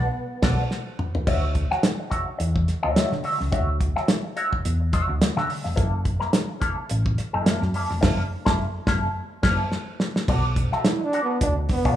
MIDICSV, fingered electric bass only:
0, 0, Header, 1, 2, 480
1, 0, Start_track
1, 0, Tempo, 563380
1, 1086, Time_signature, 4, 2, 24, 8
1, 10192, End_track
2, 0, Start_track
2, 0, Title_t, "Fingered electric bass"
2, 0, Program_c, 0, 33
2, 364, Note_on_c, 0, 35, 91
2, 534, Note_off_c, 0, 35, 0
2, 1081, Note_on_c, 0, 38, 97
2, 1406, Note_off_c, 0, 38, 0
2, 2044, Note_on_c, 0, 40, 72
2, 2251, Note_off_c, 0, 40, 0
2, 2420, Note_on_c, 0, 38, 76
2, 2510, Note_off_c, 0, 38, 0
2, 2659, Note_on_c, 0, 50, 85
2, 2749, Note_off_c, 0, 50, 0
2, 2903, Note_on_c, 0, 37, 82
2, 2991, Note_off_c, 0, 37, 0
2, 3004, Note_on_c, 0, 38, 97
2, 3326, Note_off_c, 0, 38, 0
2, 3964, Note_on_c, 0, 40, 86
2, 4170, Note_off_c, 0, 40, 0
2, 4339, Note_on_c, 0, 38, 85
2, 4428, Note_off_c, 0, 38, 0
2, 4574, Note_on_c, 0, 50, 91
2, 4666, Note_off_c, 0, 50, 0
2, 4817, Note_on_c, 0, 29, 89
2, 4907, Note_off_c, 0, 29, 0
2, 4919, Note_on_c, 0, 30, 94
2, 5243, Note_off_c, 0, 30, 0
2, 5886, Note_on_c, 0, 33, 92
2, 6091, Note_off_c, 0, 33, 0
2, 6254, Note_on_c, 0, 30, 74
2, 6345, Note_off_c, 0, 30, 0
2, 6491, Note_on_c, 0, 42, 92
2, 6584, Note_off_c, 0, 42, 0
2, 6735, Note_on_c, 0, 29, 99
2, 6826, Note_off_c, 0, 29, 0
2, 6835, Note_on_c, 0, 30, 100
2, 7005, Note_off_c, 0, 30, 0
2, 7211, Note_on_c, 0, 30, 103
2, 7371, Note_off_c, 0, 30, 0
2, 7556, Note_on_c, 0, 30, 105
2, 7726, Note_off_c, 0, 30, 0
2, 8037, Note_on_c, 0, 30, 89
2, 8207, Note_off_c, 0, 30, 0
2, 8761, Note_on_c, 0, 35, 102
2, 9086, Note_off_c, 0, 35, 0
2, 9724, Note_on_c, 0, 38, 86
2, 9932, Note_off_c, 0, 38, 0
2, 10099, Note_on_c, 0, 35, 71
2, 10191, Note_off_c, 0, 35, 0
2, 10192, End_track
0, 0, End_of_file